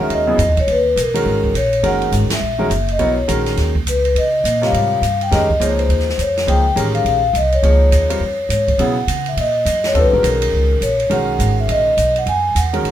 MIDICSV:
0, 0, Header, 1, 6, 480
1, 0, Start_track
1, 0, Key_signature, 5, "major"
1, 0, Tempo, 289575
1, 1124, Time_signature, 4, 2, 24, 8
1, 21400, End_track
2, 0, Start_track
2, 0, Title_t, "Vibraphone"
2, 0, Program_c, 0, 11
2, 26, Note_on_c, 0, 76, 71
2, 191, Note_off_c, 0, 76, 0
2, 211, Note_on_c, 0, 75, 81
2, 912, Note_off_c, 0, 75, 0
2, 987, Note_on_c, 0, 73, 85
2, 1059, Note_off_c, 0, 73, 0
2, 1176, Note_on_c, 0, 71, 74
2, 1599, Note_off_c, 0, 71, 0
2, 1645, Note_on_c, 0, 70, 76
2, 2520, Note_off_c, 0, 70, 0
2, 2593, Note_on_c, 0, 73, 88
2, 3027, Note_off_c, 0, 73, 0
2, 3087, Note_on_c, 0, 78, 95
2, 3515, Note_off_c, 0, 78, 0
2, 3870, Note_on_c, 0, 76, 72
2, 4742, Note_off_c, 0, 76, 0
2, 4834, Note_on_c, 0, 75, 79
2, 4998, Note_off_c, 0, 75, 0
2, 5022, Note_on_c, 0, 73, 71
2, 5444, Note_off_c, 0, 73, 0
2, 6440, Note_on_c, 0, 71, 71
2, 6919, Note_off_c, 0, 71, 0
2, 6929, Note_on_c, 0, 75, 82
2, 7705, Note_on_c, 0, 77, 73
2, 7709, Note_off_c, 0, 75, 0
2, 8580, Note_off_c, 0, 77, 0
2, 8660, Note_on_c, 0, 79, 81
2, 8735, Note_off_c, 0, 79, 0
2, 8826, Note_on_c, 0, 75, 79
2, 9305, Note_on_c, 0, 73, 70
2, 9313, Note_off_c, 0, 75, 0
2, 9436, Note_off_c, 0, 73, 0
2, 9598, Note_on_c, 0, 72, 75
2, 10276, Note_off_c, 0, 72, 0
2, 10282, Note_on_c, 0, 73, 80
2, 10713, Note_off_c, 0, 73, 0
2, 10756, Note_on_c, 0, 79, 88
2, 11190, Note_off_c, 0, 79, 0
2, 11507, Note_on_c, 0, 77, 82
2, 11677, Note_off_c, 0, 77, 0
2, 11724, Note_on_c, 0, 77, 88
2, 12154, Note_off_c, 0, 77, 0
2, 12207, Note_on_c, 0, 75, 79
2, 12465, Note_off_c, 0, 75, 0
2, 12486, Note_on_c, 0, 73, 81
2, 14084, Note_off_c, 0, 73, 0
2, 14104, Note_on_c, 0, 73, 76
2, 14590, Note_off_c, 0, 73, 0
2, 14597, Note_on_c, 0, 78, 88
2, 15381, Note_off_c, 0, 78, 0
2, 15390, Note_on_c, 0, 76, 72
2, 15462, Note_off_c, 0, 76, 0
2, 15572, Note_on_c, 0, 75, 79
2, 16348, Note_off_c, 0, 75, 0
2, 16349, Note_on_c, 0, 73, 90
2, 16421, Note_off_c, 0, 73, 0
2, 16541, Note_on_c, 0, 71, 80
2, 16962, Note_off_c, 0, 71, 0
2, 17009, Note_on_c, 0, 70, 69
2, 17945, Note_on_c, 0, 73, 87
2, 17975, Note_off_c, 0, 70, 0
2, 18429, Note_off_c, 0, 73, 0
2, 18436, Note_on_c, 0, 78, 93
2, 19144, Note_off_c, 0, 78, 0
2, 19228, Note_on_c, 0, 76, 76
2, 19300, Note_off_c, 0, 76, 0
2, 19406, Note_on_c, 0, 75, 89
2, 20109, Note_off_c, 0, 75, 0
2, 20196, Note_on_c, 0, 78, 95
2, 20266, Note_off_c, 0, 78, 0
2, 20364, Note_on_c, 0, 80, 101
2, 20838, Note_off_c, 0, 80, 0
2, 20839, Note_on_c, 0, 78, 79
2, 21400, Note_off_c, 0, 78, 0
2, 21400, End_track
3, 0, Start_track
3, 0, Title_t, "Grand piano"
3, 0, Program_c, 1, 0
3, 0, Note_on_c, 1, 51, 62
3, 0, Note_on_c, 1, 56, 49
3, 0, Note_on_c, 1, 61, 52
3, 0, Note_on_c, 1, 66, 49
3, 0, Note_on_c, 1, 70, 63
3, 427, Note_off_c, 1, 51, 0
3, 429, Note_off_c, 1, 56, 0
3, 429, Note_off_c, 1, 61, 0
3, 429, Note_off_c, 1, 70, 0
3, 431, Note_off_c, 1, 66, 0
3, 450, Note_on_c, 1, 64, 58
3, 452, Note_on_c, 1, 49, 68
3, 452, Note_on_c, 1, 54, 66
3, 455, Note_on_c, 1, 68, 66
3, 456, Note_on_c, 1, 59, 63
3, 620, Note_off_c, 1, 64, 0
3, 621, Note_off_c, 1, 49, 0
3, 621, Note_off_c, 1, 54, 0
3, 623, Note_off_c, 1, 59, 0
3, 623, Note_off_c, 1, 68, 0
3, 1890, Note_on_c, 1, 51, 62
3, 1891, Note_on_c, 1, 56, 55
3, 1891, Note_on_c, 1, 66, 58
3, 1893, Note_on_c, 1, 70, 64
3, 1895, Note_on_c, 1, 61, 57
3, 2524, Note_off_c, 1, 51, 0
3, 2524, Note_off_c, 1, 56, 0
3, 2524, Note_off_c, 1, 66, 0
3, 2525, Note_off_c, 1, 70, 0
3, 2526, Note_off_c, 1, 61, 0
3, 3037, Note_on_c, 1, 51, 65
3, 3037, Note_on_c, 1, 56, 53
3, 3041, Note_on_c, 1, 70, 75
3, 3042, Note_on_c, 1, 61, 60
3, 3044, Note_on_c, 1, 66, 54
3, 3759, Note_off_c, 1, 51, 0
3, 3760, Note_off_c, 1, 56, 0
3, 3762, Note_off_c, 1, 61, 0
3, 3762, Note_off_c, 1, 70, 0
3, 3763, Note_off_c, 1, 66, 0
3, 4287, Note_on_c, 1, 51, 63
3, 4293, Note_on_c, 1, 56, 62
3, 4295, Note_on_c, 1, 66, 59
3, 4296, Note_on_c, 1, 70, 69
3, 4297, Note_on_c, 1, 61, 61
3, 4461, Note_off_c, 1, 51, 0
3, 4464, Note_off_c, 1, 56, 0
3, 4465, Note_off_c, 1, 66, 0
3, 4465, Note_off_c, 1, 70, 0
3, 4466, Note_off_c, 1, 61, 0
3, 4953, Note_on_c, 1, 59, 52
3, 4954, Note_on_c, 1, 54, 63
3, 4959, Note_on_c, 1, 70, 50
3, 4960, Note_on_c, 1, 64, 48
3, 4962, Note_on_c, 1, 73, 70
3, 5228, Note_off_c, 1, 54, 0
3, 5228, Note_off_c, 1, 59, 0
3, 5231, Note_off_c, 1, 64, 0
3, 5231, Note_off_c, 1, 70, 0
3, 5232, Note_off_c, 1, 73, 0
3, 5434, Note_on_c, 1, 51, 64
3, 5438, Note_on_c, 1, 66, 56
3, 5439, Note_on_c, 1, 56, 53
3, 5439, Note_on_c, 1, 61, 60
3, 5439, Note_on_c, 1, 70, 68
3, 6159, Note_off_c, 1, 51, 0
3, 6161, Note_off_c, 1, 61, 0
3, 6161, Note_off_c, 1, 66, 0
3, 6162, Note_off_c, 1, 56, 0
3, 6162, Note_off_c, 1, 70, 0
3, 7652, Note_on_c, 1, 55, 63
3, 7653, Note_on_c, 1, 65, 52
3, 7654, Note_on_c, 1, 48, 56
3, 7654, Note_on_c, 1, 70, 54
3, 7658, Note_on_c, 1, 73, 62
3, 8286, Note_off_c, 1, 55, 0
3, 8287, Note_off_c, 1, 65, 0
3, 8287, Note_off_c, 1, 70, 0
3, 8288, Note_off_c, 1, 48, 0
3, 8289, Note_off_c, 1, 73, 0
3, 8804, Note_on_c, 1, 51, 53
3, 8806, Note_on_c, 1, 56, 57
3, 8807, Note_on_c, 1, 61, 55
3, 8808, Note_on_c, 1, 67, 53
3, 8811, Note_on_c, 1, 70, 65
3, 9074, Note_off_c, 1, 51, 0
3, 9075, Note_off_c, 1, 56, 0
3, 9076, Note_off_c, 1, 61, 0
3, 9076, Note_off_c, 1, 67, 0
3, 9078, Note_off_c, 1, 70, 0
3, 9281, Note_on_c, 1, 58, 58
3, 9282, Note_on_c, 1, 63, 54
3, 9287, Note_on_c, 1, 53, 56
3, 9288, Note_on_c, 1, 68, 52
3, 9289, Note_on_c, 1, 72, 63
3, 10003, Note_off_c, 1, 58, 0
3, 10004, Note_off_c, 1, 63, 0
3, 10006, Note_off_c, 1, 53, 0
3, 10006, Note_off_c, 1, 68, 0
3, 10007, Note_off_c, 1, 72, 0
3, 10726, Note_on_c, 1, 53, 56
3, 10728, Note_on_c, 1, 63, 52
3, 10728, Note_on_c, 1, 68, 49
3, 10730, Note_on_c, 1, 58, 53
3, 10731, Note_on_c, 1, 72, 64
3, 10995, Note_off_c, 1, 53, 0
3, 10996, Note_off_c, 1, 63, 0
3, 10996, Note_off_c, 1, 68, 0
3, 10997, Note_off_c, 1, 58, 0
3, 10997, Note_off_c, 1, 72, 0
3, 11202, Note_on_c, 1, 51, 58
3, 11202, Note_on_c, 1, 56, 51
3, 11204, Note_on_c, 1, 67, 52
3, 11206, Note_on_c, 1, 61, 59
3, 11207, Note_on_c, 1, 70, 63
3, 11923, Note_off_c, 1, 51, 0
3, 11923, Note_off_c, 1, 56, 0
3, 11924, Note_off_c, 1, 67, 0
3, 11925, Note_off_c, 1, 61, 0
3, 11925, Note_off_c, 1, 70, 0
3, 12649, Note_on_c, 1, 53, 59
3, 12651, Note_on_c, 1, 68, 49
3, 12653, Note_on_c, 1, 58, 54
3, 12653, Note_on_c, 1, 63, 55
3, 12655, Note_on_c, 1, 73, 66
3, 13366, Note_off_c, 1, 53, 0
3, 13367, Note_off_c, 1, 68, 0
3, 13368, Note_off_c, 1, 58, 0
3, 13368, Note_off_c, 1, 63, 0
3, 13369, Note_off_c, 1, 73, 0
3, 13420, Note_on_c, 1, 55, 51
3, 13420, Note_on_c, 1, 60, 51
3, 13421, Note_on_c, 1, 65, 48
3, 13424, Note_on_c, 1, 70, 49
3, 13432, Note_on_c, 1, 73, 55
3, 13588, Note_off_c, 1, 55, 0
3, 13588, Note_off_c, 1, 60, 0
3, 13588, Note_off_c, 1, 65, 0
3, 13589, Note_off_c, 1, 70, 0
3, 13593, Note_off_c, 1, 73, 0
3, 14562, Note_on_c, 1, 49, 59
3, 14568, Note_on_c, 1, 54, 52
3, 14570, Note_on_c, 1, 64, 55
3, 14570, Note_on_c, 1, 68, 62
3, 14571, Note_on_c, 1, 59, 57
3, 14832, Note_off_c, 1, 49, 0
3, 14835, Note_off_c, 1, 54, 0
3, 14836, Note_off_c, 1, 59, 0
3, 14836, Note_off_c, 1, 64, 0
3, 14836, Note_off_c, 1, 68, 0
3, 16479, Note_on_c, 1, 50, 54
3, 16482, Note_on_c, 1, 60, 49
3, 16484, Note_on_c, 1, 55, 49
3, 16488, Note_on_c, 1, 65, 53
3, 16488, Note_on_c, 1, 69, 61
3, 16749, Note_off_c, 1, 50, 0
3, 16751, Note_off_c, 1, 60, 0
3, 16752, Note_off_c, 1, 55, 0
3, 16754, Note_off_c, 1, 65, 0
3, 16754, Note_off_c, 1, 69, 0
3, 16791, Note_on_c, 1, 51, 47
3, 16791, Note_on_c, 1, 66, 42
3, 16792, Note_on_c, 1, 56, 46
3, 16796, Note_on_c, 1, 61, 47
3, 16801, Note_on_c, 1, 70, 57
3, 17819, Note_off_c, 1, 66, 0
3, 17820, Note_off_c, 1, 51, 0
3, 17820, Note_off_c, 1, 56, 0
3, 17822, Note_off_c, 1, 61, 0
3, 17824, Note_off_c, 1, 70, 0
3, 18391, Note_on_c, 1, 51, 60
3, 18393, Note_on_c, 1, 56, 53
3, 18393, Note_on_c, 1, 61, 53
3, 18400, Note_on_c, 1, 66, 47
3, 18402, Note_on_c, 1, 70, 61
3, 19727, Note_off_c, 1, 51, 0
3, 19728, Note_off_c, 1, 61, 0
3, 19729, Note_off_c, 1, 56, 0
3, 19732, Note_off_c, 1, 66, 0
3, 19733, Note_off_c, 1, 70, 0
3, 21104, Note_on_c, 1, 56, 56
3, 21104, Note_on_c, 1, 61, 53
3, 21105, Note_on_c, 1, 51, 59
3, 21109, Note_on_c, 1, 70, 64
3, 21110, Note_on_c, 1, 66, 54
3, 21400, Note_off_c, 1, 51, 0
3, 21400, Note_off_c, 1, 56, 0
3, 21400, Note_off_c, 1, 61, 0
3, 21400, Note_off_c, 1, 66, 0
3, 21400, Note_off_c, 1, 70, 0
3, 21400, End_track
4, 0, Start_track
4, 0, Title_t, "Upright bass"
4, 0, Program_c, 2, 32
4, 158, Note_on_c, 2, 39, 68
4, 618, Note_off_c, 2, 39, 0
4, 628, Note_on_c, 2, 42, 84
4, 794, Note_off_c, 2, 42, 0
4, 794, Note_on_c, 2, 39, 50
4, 942, Note_off_c, 2, 39, 0
4, 952, Note_on_c, 2, 35, 58
4, 1107, Note_off_c, 2, 35, 0
4, 1117, Note_on_c, 2, 39, 74
4, 1582, Note_off_c, 2, 39, 0
4, 1592, Note_on_c, 2, 35, 78
4, 2064, Note_off_c, 2, 35, 0
4, 2079, Note_on_c, 2, 32, 75
4, 2548, Note_off_c, 2, 32, 0
4, 2555, Note_on_c, 2, 34, 78
4, 3019, Note_off_c, 2, 34, 0
4, 3029, Note_on_c, 2, 30, 70
4, 3504, Note_off_c, 2, 30, 0
4, 3514, Note_on_c, 2, 32, 80
4, 3796, Note_off_c, 2, 32, 0
4, 3988, Note_on_c, 2, 34, 65
4, 4463, Note_off_c, 2, 34, 0
4, 4472, Note_on_c, 2, 30, 85
4, 4946, Note_off_c, 2, 30, 0
4, 4957, Note_on_c, 2, 35, 68
4, 5428, Note_off_c, 2, 35, 0
4, 5440, Note_on_c, 2, 34, 78
4, 5902, Note_off_c, 2, 34, 0
4, 5912, Note_on_c, 2, 39, 66
4, 6386, Note_off_c, 2, 39, 0
4, 6399, Note_on_c, 2, 37, 70
4, 6870, Note_off_c, 2, 37, 0
4, 6879, Note_on_c, 2, 49, 69
4, 7346, Note_off_c, 2, 49, 0
4, 7356, Note_on_c, 2, 46, 77
4, 7823, Note_off_c, 2, 46, 0
4, 7833, Note_on_c, 2, 44, 71
4, 8303, Note_off_c, 2, 44, 0
4, 8313, Note_on_c, 2, 43, 76
4, 8787, Note_off_c, 2, 43, 0
4, 8809, Note_on_c, 2, 41, 75
4, 9267, Note_off_c, 2, 41, 0
4, 9277, Note_on_c, 2, 37, 76
4, 9744, Note_off_c, 2, 37, 0
4, 9754, Note_on_c, 2, 39, 63
4, 10227, Note_off_c, 2, 39, 0
4, 10242, Note_on_c, 2, 41, 82
4, 10712, Note_off_c, 2, 41, 0
4, 10723, Note_on_c, 2, 37, 71
4, 11192, Note_off_c, 2, 37, 0
4, 11201, Note_on_c, 2, 33, 85
4, 11671, Note_off_c, 2, 33, 0
4, 11680, Note_on_c, 2, 34, 69
4, 12150, Note_off_c, 2, 34, 0
4, 12157, Note_on_c, 2, 36, 75
4, 12628, Note_off_c, 2, 36, 0
4, 12639, Note_on_c, 2, 37, 70
4, 13109, Note_off_c, 2, 37, 0
4, 13116, Note_on_c, 2, 39, 79
4, 13581, Note_off_c, 2, 39, 0
4, 13591, Note_on_c, 2, 41, 72
4, 14065, Note_off_c, 2, 41, 0
4, 14073, Note_on_c, 2, 44, 75
4, 14545, Note_off_c, 2, 44, 0
4, 14557, Note_on_c, 2, 47, 74
4, 15027, Note_off_c, 2, 47, 0
4, 15037, Note_on_c, 2, 49, 74
4, 15507, Note_off_c, 2, 49, 0
4, 15526, Note_on_c, 2, 46, 61
4, 15992, Note_off_c, 2, 46, 0
4, 16002, Note_on_c, 2, 42, 79
4, 16466, Note_off_c, 2, 42, 0
4, 16476, Note_on_c, 2, 39, 69
4, 16630, Note_off_c, 2, 39, 0
4, 16630, Note_on_c, 2, 35, 51
4, 16782, Note_off_c, 2, 35, 0
4, 16792, Note_on_c, 2, 34, 62
4, 16947, Note_off_c, 2, 34, 0
4, 16954, Note_on_c, 2, 35, 88
4, 17425, Note_off_c, 2, 35, 0
4, 17443, Note_on_c, 2, 37, 71
4, 17909, Note_off_c, 2, 37, 0
4, 17917, Note_on_c, 2, 34, 76
4, 18386, Note_off_c, 2, 34, 0
4, 18399, Note_on_c, 2, 35, 71
4, 18867, Note_off_c, 2, 35, 0
4, 18877, Note_on_c, 2, 32, 80
4, 19346, Note_off_c, 2, 32, 0
4, 19354, Note_on_c, 2, 34, 70
4, 19824, Note_off_c, 2, 34, 0
4, 19844, Note_on_c, 2, 35, 81
4, 20310, Note_off_c, 2, 35, 0
4, 20323, Note_on_c, 2, 42, 72
4, 20789, Note_off_c, 2, 42, 0
4, 20807, Note_on_c, 2, 40, 75
4, 21271, Note_off_c, 2, 40, 0
4, 21283, Note_on_c, 2, 39, 68
4, 21400, Note_off_c, 2, 39, 0
4, 21400, End_track
5, 0, Start_track
5, 0, Title_t, "Muted upright bass strokes"
5, 3811, Note_on_c, 9, 29, 37
5, 3976, Note_off_c, 9, 29, 0
5, 21400, End_track
6, 0, Start_track
6, 0, Title_t, "Drums"
6, 167, Note_on_c, 9, 51, 53
6, 333, Note_off_c, 9, 51, 0
6, 642, Note_on_c, 9, 44, 55
6, 642, Note_on_c, 9, 51, 56
6, 808, Note_off_c, 9, 44, 0
6, 808, Note_off_c, 9, 51, 0
6, 942, Note_on_c, 9, 36, 56
6, 945, Note_on_c, 9, 51, 44
6, 1107, Note_off_c, 9, 36, 0
6, 1111, Note_off_c, 9, 51, 0
6, 1123, Note_on_c, 9, 51, 53
6, 1288, Note_off_c, 9, 51, 0
6, 1612, Note_on_c, 9, 44, 56
6, 1612, Note_on_c, 9, 51, 61
6, 1778, Note_off_c, 9, 44, 0
6, 1778, Note_off_c, 9, 51, 0
6, 1911, Note_on_c, 9, 51, 66
6, 2077, Note_off_c, 9, 51, 0
6, 2385, Note_on_c, 9, 36, 48
6, 2551, Note_off_c, 9, 36, 0
6, 2571, Note_on_c, 9, 44, 44
6, 2571, Note_on_c, 9, 51, 62
6, 2737, Note_off_c, 9, 44, 0
6, 2737, Note_off_c, 9, 51, 0
6, 2863, Note_on_c, 9, 51, 43
6, 3029, Note_off_c, 9, 51, 0
6, 3044, Note_on_c, 9, 51, 57
6, 3209, Note_off_c, 9, 51, 0
6, 3342, Note_on_c, 9, 51, 37
6, 3508, Note_off_c, 9, 51, 0
6, 3520, Note_on_c, 9, 44, 65
6, 3520, Note_on_c, 9, 51, 60
6, 3686, Note_off_c, 9, 44, 0
6, 3686, Note_off_c, 9, 51, 0
6, 3813, Note_on_c, 9, 38, 77
6, 3816, Note_on_c, 9, 51, 66
6, 3979, Note_off_c, 9, 38, 0
6, 3982, Note_off_c, 9, 51, 0
6, 4486, Note_on_c, 9, 44, 45
6, 4486, Note_on_c, 9, 51, 56
6, 4652, Note_off_c, 9, 44, 0
6, 4652, Note_off_c, 9, 51, 0
6, 4781, Note_on_c, 9, 51, 41
6, 4946, Note_off_c, 9, 51, 0
6, 4957, Note_on_c, 9, 51, 53
6, 5122, Note_off_c, 9, 51, 0
6, 5446, Note_on_c, 9, 44, 57
6, 5446, Note_on_c, 9, 51, 57
6, 5611, Note_off_c, 9, 44, 0
6, 5611, Note_off_c, 9, 51, 0
6, 5736, Note_on_c, 9, 38, 30
6, 5739, Note_on_c, 9, 51, 44
6, 5901, Note_off_c, 9, 38, 0
6, 5905, Note_off_c, 9, 51, 0
6, 5920, Note_on_c, 9, 38, 32
6, 5923, Note_on_c, 9, 51, 49
6, 6086, Note_off_c, 9, 38, 0
6, 6089, Note_off_c, 9, 51, 0
6, 6221, Note_on_c, 9, 36, 49
6, 6387, Note_off_c, 9, 36, 0
6, 6410, Note_on_c, 9, 44, 60
6, 6410, Note_on_c, 9, 51, 62
6, 6576, Note_off_c, 9, 44, 0
6, 6576, Note_off_c, 9, 51, 0
6, 6711, Note_on_c, 9, 51, 42
6, 6876, Note_off_c, 9, 51, 0
6, 6896, Note_on_c, 9, 51, 58
6, 7062, Note_off_c, 9, 51, 0
6, 7377, Note_on_c, 9, 44, 60
6, 7377, Note_on_c, 9, 51, 64
6, 7543, Note_off_c, 9, 44, 0
6, 7543, Note_off_c, 9, 51, 0
6, 7672, Note_on_c, 9, 38, 37
6, 7675, Note_on_c, 9, 51, 38
6, 7837, Note_off_c, 9, 38, 0
6, 7841, Note_off_c, 9, 51, 0
6, 7863, Note_on_c, 9, 51, 58
6, 8028, Note_off_c, 9, 51, 0
6, 8335, Note_on_c, 9, 44, 52
6, 8335, Note_on_c, 9, 51, 59
6, 8501, Note_off_c, 9, 44, 0
6, 8501, Note_off_c, 9, 51, 0
6, 8638, Note_on_c, 9, 51, 41
6, 8804, Note_off_c, 9, 51, 0
6, 8818, Note_on_c, 9, 38, 35
6, 8822, Note_on_c, 9, 51, 59
6, 8984, Note_off_c, 9, 38, 0
6, 8988, Note_off_c, 9, 51, 0
6, 9112, Note_on_c, 9, 36, 49
6, 9277, Note_off_c, 9, 36, 0
6, 9304, Note_on_c, 9, 44, 48
6, 9304, Note_on_c, 9, 51, 63
6, 9470, Note_off_c, 9, 44, 0
6, 9470, Note_off_c, 9, 51, 0
6, 9594, Note_on_c, 9, 51, 43
6, 9760, Note_off_c, 9, 51, 0
6, 9777, Note_on_c, 9, 51, 46
6, 9938, Note_on_c, 9, 38, 25
6, 9942, Note_off_c, 9, 51, 0
6, 10097, Note_off_c, 9, 38, 0
6, 10097, Note_on_c, 9, 38, 38
6, 10258, Note_on_c, 9, 44, 55
6, 10258, Note_on_c, 9, 51, 54
6, 10263, Note_off_c, 9, 38, 0
6, 10423, Note_off_c, 9, 44, 0
6, 10423, Note_off_c, 9, 51, 0
6, 10563, Note_on_c, 9, 38, 49
6, 10566, Note_on_c, 9, 51, 40
6, 10728, Note_off_c, 9, 38, 0
6, 10732, Note_off_c, 9, 51, 0
6, 10743, Note_on_c, 9, 51, 61
6, 10909, Note_off_c, 9, 51, 0
6, 11221, Note_on_c, 9, 44, 49
6, 11221, Note_on_c, 9, 51, 64
6, 11387, Note_off_c, 9, 44, 0
6, 11387, Note_off_c, 9, 51, 0
6, 11514, Note_on_c, 9, 51, 42
6, 11680, Note_off_c, 9, 51, 0
6, 11698, Note_on_c, 9, 51, 53
6, 11864, Note_off_c, 9, 51, 0
6, 12178, Note_on_c, 9, 44, 52
6, 12178, Note_on_c, 9, 51, 60
6, 12344, Note_off_c, 9, 44, 0
6, 12344, Note_off_c, 9, 51, 0
6, 12471, Note_on_c, 9, 51, 42
6, 12637, Note_off_c, 9, 51, 0
6, 12654, Note_on_c, 9, 51, 56
6, 12820, Note_off_c, 9, 51, 0
6, 13130, Note_on_c, 9, 44, 52
6, 13130, Note_on_c, 9, 51, 60
6, 13296, Note_off_c, 9, 44, 0
6, 13296, Note_off_c, 9, 51, 0
6, 13430, Note_on_c, 9, 51, 64
6, 13596, Note_off_c, 9, 51, 0
6, 14092, Note_on_c, 9, 44, 47
6, 14092, Note_on_c, 9, 51, 61
6, 14258, Note_off_c, 9, 44, 0
6, 14258, Note_off_c, 9, 51, 0
6, 14386, Note_on_c, 9, 36, 57
6, 14391, Note_on_c, 9, 51, 42
6, 14551, Note_off_c, 9, 36, 0
6, 14557, Note_off_c, 9, 51, 0
6, 14569, Note_on_c, 9, 51, 60
6, 14735, Note_off_c, 9, 51, 0
6, 15052, Note_on_c, 9, 44, 54
6, 15052, Note_on_c, 9, 51, 66
6, 15218, Note_off_c, 9, 44, 0
6, 15218, Note_off_c, 9, 51, 0
6, 15347, Note_on_c, 9, 51, 41
6, 15513, Note_off_c, 9, 51, 0
6, 15538, Note_on_c, 9, 51, 59
6, 15703, Note_off_c, 9, 51, 0
6, 16016, Note_on_c, 9, 44, 49
6, 16016, Note_on_c, 9, 51, 64
6, 16182, Note_off_c, 9, 44, 0
6, 16182, Note_off_c, 9, 51, 0
6, 16307, Note_on_c, 9, 38, 52
6, 16310, Note_on_c, 9, 51, 44
6, 16473, Note_off_c, 9, 38, 0
6, 16476, Note_off_c, 9, 51, 0
6, 16491, Note_on_c, 9, 51, 53
6, 16657, Note_off_c, 9, 51, 0
6, 16972, Note_on_c, 9, 44, 45
6, 16972, Note_on_c, 9, 51, 61
6, 17137, Note_off_c, 9, 44, 0
6, 17137, Note_off_c, 9, 51, 0
6, 17267, Note_on_c, 9, 51, 62
6, 17433, Note_off_c, 9, 51, 0
6, 17931, Note_on_c, 9, 44, 55
6, 17931, Note_on_c, 9, 51, 59
6, 18097, Note_off_c, 9, 44, 0
6, 18097, Note_off_c, 9, 51, 0
6, 18227, Note_on_c, 9, 51, 45
6, 18393, Note_off_c, 9, 51, 0
6, 18409, Note_on_c, 9, 51, 58
6, 18575, Note_off_c, 9, 51, 0
6, 18891, Note_on_c, 9, 44, 56
6, 18891, Note_on_c, 9, 51, 61
6, 19057, Note_off_c, 9, 44, 0
6, 19057, Note_off_c, 9, 51, 0
6, 19372, Note_on_c, 9, 51, 57
6, 19537, Note_off_c, 9, 51, 0
6, 19850, Note_on_c, 9, 44, 50
6, 19850, Note_on_c, 9, 51, 55
6, 20016, Note_off_c, 9, 44, 0
6, 20016, Note_off_c, 9, 51, 0
6, 20152, Note_on_c, 9, 51, 44
6, 20318, Note_off_c, 9, 51, 0
6, 20330, Note_on_c, 9, 51, 52
6, 20496, Note_off_c, 9, 51, 0
6, 20815, Note_on_c, 9, 44, 47
6, 20815, Note_on_c, 9, 51, 67
6, 20981, Note_off_c, 9, 44, 0
6, 20981, Note_off_c, 9, 51, 0
6, 21111, Note_on_c, 9, 51, 46
6, 21276, Note_off_c, 9, 51, 0
6, 21299, Note_on_c, 9, 51, 48
6, 21400, Note_off_c, 9, 51, 0
6, 21400, End_track
0, 0, End_of_file